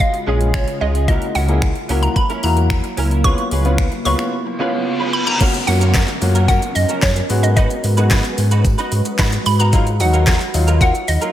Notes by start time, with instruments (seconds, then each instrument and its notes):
Already playing: ambient pad C#3 G#3 F4
0.00 synth pluck F5, muted clean electric guitar stroke, kick, closed hi-hat
0.13 muted clean electric guitar stroke, closed hi-hat
0.27 sub bass A#1, clean electric guitar G#3 C#4 F4 G#4, grand piano G#3 C#4 G#4
0.40 muted clean electric guitar stroke, closed hi-hat
0.54 synth pluck C#5, finger snap, muted clean electric guitar stroke, kick, closed hi-hat
0.67 muted clean electric guitar stroke, closed hi-hat
0.81 sub bass C#2, clean electric guitar G#3 C#4 F4 G#4, synth pluck D#5
0.94 clean electric guitar G#3 C#4 F4 G#4, closed hi-hat
1.08 clean electric guitar F#3 C#4 E4 A#4, ambient pad F#3 A#3 E4, grand piano A#3 E4 F#4, synth pluck D#5, kick, closed hi-hat
1.22 closed hi-hat
1.35 sub bass C#2, clean electric guitar F#3 C#4 E4 A#4, synth pluck F#5, open hi-hat
1.48 clean electric guitar F#3 C#4 E4 A#4, grand piano A#3 E4 G#4, closed hi-hat
1.62 finger snap, kick, closed hi-hat
1.76 muted clean electric guitar stroke, closed hi-hat
1.89 sub bass C#2, clean electric guitar F#3 C#4 E4 A#4, grand piano A#3 E4 F#4, open hi-hat
2.03 synth pluck A#5, muted clean electric guitar stroke, closed hi-hat
2.16 synth pluck B5, muted clean electric guitar stroke, kick, closed hi-hat
2.29 clean electric guitar F#3 C#4 E4 A#4, closed hi-hat
2.43 sub bass E2, grand piano A#3 E4 F#4, synth pluck A#5, muted clean electric guitar stroke, open hi-hat
2.57 muted clean electric guitar stroke, closed hi-hat
2.70 finger snap, muted clean electric guitar stroke, kick, closed hi-hat
2.84 muted clean electric guitar stroke, closed hi-hat
2.97 sub bass C#2, clean electric guitar F#3 C#4 E4 A#4, open hi-hat
3.10 clean electric guitar F#3 C#4 E4 A#4, closed hi-hat
3.24 ambient pad C#3 B3 F4, clean electric guitar G#3 C#4 F4 B4, grand piano B3 C#4 F4, synth pluck C#6, kick, closed hi-hat
3.38 closed hi-hat
3.51 sub bass C#2, clean electric guitar G#3 C#4 F4 B4, open hi-hat
3.64 clean electric guitar G#3 C#4 F4 B4, grand piano B3 C#4 F4, closed hi-hat
3.78 finger snap, kick, closed hi-hat
3.92 muted clean electric guitar stroke, closed hi-hat
4.05 sub bass C#2, clean electric guitar G#3 C#4 F4 B4, grand piano B3 C#4 F4, synth pluck C#6, open hi-hat
4.19 finger snap, muted clean electric guitar stroke, closed hi-hat
4.32 muted clean electric guitar stroke, reverse cymbal
4.46 muted clean electric guitar stroke
4.59 clean electric guitar G#3 C#4 F4 B4, grand piano B3 C#4 F4
4.73 muted clean electric guitar stroke
4.86 muted clean electric guitar stroke
5.00 clean electric guitar G#3 C#4 F4 B4
5.13 synth pluck B5, muted clean electric guitar stroke
5.27 synth pluck A#5, muted clean electric guitar stroke
5.40 ambient pad F#3 C#4 A#4, clean electric guitar A#3 C#4 F#4 A#4, grand piano A#3 C#4 F#4, kick, closed hi-hat, crash, tambourine, downlifter, shaker
5.54 muted clean electric guitar stroke, closed hi-hat, shaker
5.67 sub bass F#2, grand piano A#3 C#4 F#4, synth pluck F#5, muted clean electric guitar stroke, open hi-hat, shaker
5.81 clean electric guitar A#3 C#4 F#4 A#4, closed hi-hat, shaker
5.94 clean electric guitar A#3 C#4 F#4 A#4, kick, snare, clap, closed hi-hat, tambourine, shaker
6.08 muted clean electric guitar stroke, closed hi-hat, shaker
6.21 sub bass F#2, grand piano A#3 C#4 F#4, muted clean electric guitar stroke, open hi-hat, tambourine, shaker
6.35 clean electric guitar A#3 C#4 F#4 A#4, closed hi-hat, shaker
6.48 clean electric guitar A#3 C#4 F#4 A#4, synth pluck F#5, kick, closed hi-hat, tambourine, shaker
6.62 muted clean electric guitar stroke, closed hi-hat, shaker
6.75 sub bass F#2, synth pluck D#5, muted clean electric guitar stroke, open hi-hat, tambourine, shaker
6.89 clean electric guitar A#3 C#4 F#4 A#4, closed hi-hat, shaker
7.02 sub bass F#2, synth pluck C#5, muted clean electric guitar stroke, kick, snare, clap, closed hi-hat, tambourine, shaker
7.16 muted clean electric guitar stroke, closed hi-hat, shaker
7.30 sub bass G#2, grand piano G#3 B3 F#4, ambient pad G#3 F#4 B4, open hi-hat, tambourine, shaker
7.43 synth pluck D#5, muted clean electric guitar stroke, closed hi-hat, shaker
7.56 clean electric guitar B3 D#4 F#4 B4, synth pluck D#5, kick, closed hi-hat, shaker
7.70 muted clean electric guitar stroke, closed hi-hat, shaker
7.84 sub bass G#2, grand piano B3 F#4, muted clean electric guitar stroke, open hi-hat, shaker
7.97 grand piano G#3 B3 F#4, clean electric guitar B3 D#4 F#4 B4, closed hi-hat, shaker
8.11 clean electric guitar B3 D#4 F#4 B4, kick, snare, clap, closed hi-hat, tambourine, shaker
8.24 muted clean electric guitar stroke, closed hi-hat, shaker
8.38 sub bass G#2, muted clean electric guitar stroke, open hi-hat, tambourine, shaker
8.51 clean electric guitar B3 D#4 F#4 B4, closed hi-hat, shaker
8.65 muted clean electric guitar stroke, kick, closed hi-hat, tambourine, shaker
8.78 clean electric guitar B3 D#4 F#4 B4, closed hi-hat, shaker
8.92 sub bass G#2, muted clean electric guitar stroke, open hi-hat, tambourine, shaker
9.05 muted clean electric guitar stroke, closed hi-hat, shaker
9.18 sub bass G#2, clean electric guitar B3 D#4 F#4 B4, kick, snare, clap, closed hi-hat, tambourine, shaker
9.32 muted clean electric guitar stroke, closed hi-hat, shaker
9.46 sub bass G#2, synth pluck B5, muted clean electric guitar stroke, open hi-hat, tambourine, shaker
9.59 clean electric guitar B3 D#4 F#4 B4, synth pluck A#5, closed hi-hat, shaker
9.72 clean electric guitar F#3 A#3 F4 A#4, grand piano F#3 D#4 F4, ambient pad F#3 D#4, kick, closed hi-hat, tambourine, shaker
9.86 muted clean electric guitar stroke, closed hi-hat, shaker
10.00 sub bass D#2, grand piano F#3 D#4 F#4, synth pluck F#5, muted clean electric guitar stroke, open hi-hat, tambourine, shaker
10.13 clean electric guitar F#3 A#3 F4 A#4, closed hi-hat, shaker
10.27 clean electric guitar F#3 A#3 F4 A#4, kick, snare, clap, closed hi-hat, tambourine, shaker
10.40 muted clean electric guitar stroke, closed hi-hat, shaker
10.54 sub bass D#2, grand piano F#3 D#4 F4, muted clean electric guitar stroke, open hi-hat, tambourine, shaker
10.67 clean electric guitar F#3 A#3 F4 A#4, closed hi-hat, shaker
10.81 clean electric guitar F#3 A#3 F4 A#4, synth pluck F#5, kick, closed hi-hat, tambourine, shaker
10.94 muted clean electric guitar stroke, closed hi-hat, shaker
11.08 sub bass D#2, synth pluck D#5, muted clean electric guitar stroke, open hi-hat, tambourine, shaker
11.21 clean electric guitar F#3 A#3 F4 A#4, closed hi-hat, shaker